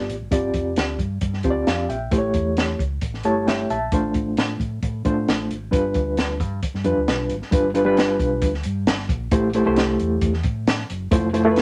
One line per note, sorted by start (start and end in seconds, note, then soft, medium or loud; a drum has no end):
0.00 0.14 B3 medium
0.00 0.14 F4 medium
0.00 0.14 G4 medium
0.00 0.15 D5 medium
0.09 0.19 A1 medium
0.09 closed hi-hat medium
0.21 0.30 G#1 medium
0.31 0.51 G1 medium
0.31 0.98 C4 medium
0.31 0.98 F4 medium
0.31 0.99 G4 medium
0.31 0.99 D5 medium
0.31 kick loud
0.31 closed hi-hat loud
0.54 0.73 F1 medium
0.54 kick medium
0.54 closed hi-hat medium
0.76 0.96 D2 medium
0.76 snare loud
0.76 closed hi-hat medium
0.99 1.18 G2 loud
0.99 kick medium
0.99 closed hi-hat medium
1.21 1.41 G2 loud
1.21 kick medium
1.21 closed hi-hat medium
1.33 snare soft
1.43 1.64 D2 medium
1.43 1.94 C4 medium
1.43 1.94 F4 medium
1.43 1.94 G4 medium
1.43 1.50 C5 medium
1.43 kick medium
1.43 closed hi-hat medium
1.51 1.66 D5 medium
1.67 1.86 F2 medium
1.67 1.88 D5 soft
1.67 1.88 F5 medium
1.67 snare loud
1.67 closed hi-hat medium
1.89 2.09 A#1 medium
1.89 2.32 E5 soft
1.89 2.32 G5 medium
1.89 closed hi-hat medium
2.11 2.31 A1 medium
2.11 2.78 A3 medium
2.11 2.79 E4 medium
2.11 2.79 G4 medium
2.11 2.17 C5 medium
2.11 kick loud
2.11 closed hi-hat loud
2.18 2.82 C#5 medium
2.34 2.73 E2 medium
2.34 kick medium
2.34 closed hi-hat medium
2.57 snare loud
2.57 closed hi-hat medium
2.79 2.99 C#2 medium
2.79 kick medium
2.79 closed hi-hat medium
3.01 3.21 A1 medium
3.01 kick medium
3.01 closed hi-hat medium
3.14 snare soft
3.24 3.64 G1 medium
3.24 3.75 A3 medium
3.24 3.75 E4 medium
3.24 3.75 G4 medium
3.24 3.75 C#5 medium
3.24 3.46 A5 medium
3.24 closed hi-hat medium
3.47 3.69 E5 medium
3.47 3.68 G5 medium
3.47 snare loud
3.47 closed hi-hat medium
3.70 3.89 A#1 medium
3.70 3.91 E5 medium
3.70 4.13 A5 medium
3.70 closed hi-hat medium
3.92 4.11 A1 medium
3.92 4.59 A3 medium
3.92 4.59 D4 medium
3.92 4.60 F4 medium
3.92 4.60 C5 medium
3.92 kick loud
3.92 closed hi-hat loud
4.14 4.34 A1 medium
4.14 kick medium
4.14 closed hi-hat medium
4.37 4.57 A2 medium
4.37 snare loud
4.37 closed hi-hat medium
4.60 4.79 A2 medium
4.60 kick medium
4.60 closed hi-hat medium
4.83 5.02 A2 medium
4.83 kick medium
4.83 closed hi-hat medium
5.05 5.25 A2 medium
5.05 5.55 A3 medium
5.05 5.55 D4 medium
5.05 5.55 F4 medium
5.05 5.55 C5 medium
5.05 kick medium
5.05 closed hi-hat medium
5.28 5.47 A1 medium
5.28 snare loud
5.28 closed hi-hat medium
5.50 5.70 G#1 medium
5.50 closed hi-hat medium
5.71 5.92 G1 medium
5.71 6.39 G3 medium
5.71 6.39 D4 medium
5.71 6.39 F4 medium
5.71 6.39 B4 medium
5.71 kick loud
5.71 closed hi-hat loud
5.94 6.40 D2 medium
5.94 kick medium
5.94 closed hi-hat medium
6.17 snare loud
6.17 closed hi-hat medium
6.40 6.59 G2 medium
6.40 kick medium
6.40 closed hi-hat medium
6.63 kick medium
6.63 closed hi-hat medium
6.74 6.84 G2 medium
6.74 snare soft
6.84 6.95 F2 medium
6.84 7.35 G3 medium
6.84 7.35 D4 medium
6.84 7.35 F4 medium
6.84 7.36 B4 medium
6.84 closed hi-hat medium
6.97 7.07 D2 medium
7.08 7.27 B1 medium
7.08 snare loud
7.08 closed hi-hat medium
7.30 7.40 G#1 medium
7.30 closed hi-hat medium
7.42 snare soft
7.51 8.17 G1 loud
7.51 7.69 G3 medium
7.51 7.69 D4 medium
7.51 7.69 F4 medium
7.51 7.69 B4 medium
7.51 kick loud
7.51 closed hi-hat loud
7.74 7.83 G3 medium
7.74 7.83 D4 medium
7.74 7.83 F4 medium
7.74 7.84 B4 medium
7.74 closed hi-hat medium
7.85 8.52 G3 medium
7.85 8.53 D4 medium
7.85 8.53 F4 medium
7.85 8.53 B4 medium
7.97 snare loud
7.97 closed hi-hat medium
8.19 8.39 B1 medium
8.19 kick medium
8.19 closed hi-hat medium
8.42 8.62 D2 medium
8.42 kick medium
8.42 closed hi-hat medium
8.54 snare soft
8.63 8.85 G2 medium
8.63 closed hi-hat medium
8.87 9.07 G1 medium
8.87 snare loud
8.87 closed hi-hat medium
8.99 snare soft
9.09 9.29 A#1 medium
9.09 kick medium
9.09 closed hi-hat medium
9.31 9.61 A1 loud
9.31 9.49 A3 medium
9.31 9.49 E4 medium
9.31 9.49 G4 medium
9.31 9.49 C5 medium
9.31 kick loud
9.31 closed hi-hat loud
9.54 9.63 A3 medium
9.54 9.63 E4 medium
9.54 9.64 G4 medium
9.54 9.64 C5 medium
9.54 closed hi-hat medium
9.66 9.95 C2 medium
9.66 10.33 A3 medium
9.66 10.33 E4 medium
9.66 10.33 G4 medium
9.66 10.33 C5 medium
9.76 snare loud
9.76 closed hi-hat medium
10.00 10.20 E2 medium
10.00 closed hi-hat medium
10.21 10.41 E2 medium
10.21 kick medium
10.21 closed hi-hat medium
10.34 snare soft
10.43 10.83 A2 medium
10.43 kick medium
10.43 closed hi-hat medium
10.67 snare loud
10.67 closed hi-hat medium
10.79 snare soft
10.90 11.09 F#1 medium
10.90 closed hi-hat medium
11.11 11.62 F1 medium
11.11 11.28 A3 medium
11.11 11.29 E4 medium
11.11 11.29 F4 medium
11.11 11.29 C5 medium
11.11 kick loud
11.11 closed hi-hat loud
11.33 11.42 A3 medium
11.33 11.43 E4 medium
11.33 11.43 F4 medium
11.33 11.43 C5 medium
11.33 closed hi-hat medium
11.45 11.62 A3 medium
11.45 11.62 E4 medium
11.45 11.62 F4 medium
11.45 11.51 A#4 medium
11.51 11.62 B4 loud
11.56 snare loud
11.56 closed hi-hat medium